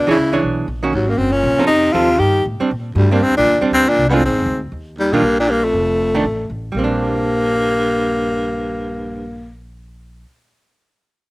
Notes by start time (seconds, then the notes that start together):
0.07 C#3 E3 D4 E4 G#4 C#5, muted upright bass stroke
0.17 C#2
0.33 E3 D4 G#4 C#5
0.43 B1
0.68 A#1
0.83 D#3 A#3 C#4 F#4
0.92 G#1 D#2 F#3
1.07 F#2 A#3
1.16 F#1 F#2 C4
1.32 A#2 C#4
1.43 A#1
1.58 F3 C4 D#4 A4, muted upright bass stroke
1.66 F2 C3 D#4
1.91 D#2 C3 F3 C4 D#4 F4 A4
2.18 G2 D#3 G4
2.45 A2
2.60 G3 C4 D4, muted upright bass stroke
2.71 A#2
2.95 D2 G2 G3
3.11 G2 G3 A#3 C4 D4
3.21 F2 G2 C4
3.30 D2
3.37 A#1 A#2 D4
3.46 D#2
3.61 G3 C4 D4, muted upright bass stroke
3.71 D2 G2 C4
3.88 A#2 D4
3.96 C2
4.08 G2 G#3 B3
4.12 A2 C4 D4 F4
4.22 A#1 G#2 C4
4.29 G#1
4.38 F1
4.46 D2
4.72 D#2
4.98 D#2 G3
5.12 G2 A#2 D#3 G3 A#3 D4 F4
5.22 A#1
5.39 A#2 D4
5.49 G2 A#3
5.64 F2 A3
5.73 F1
6.15 D#3 A3 D4
6.24 A1
6.50 A1
6.72 A#1 G2 G3
6.76 A#3 C4
6.84 D4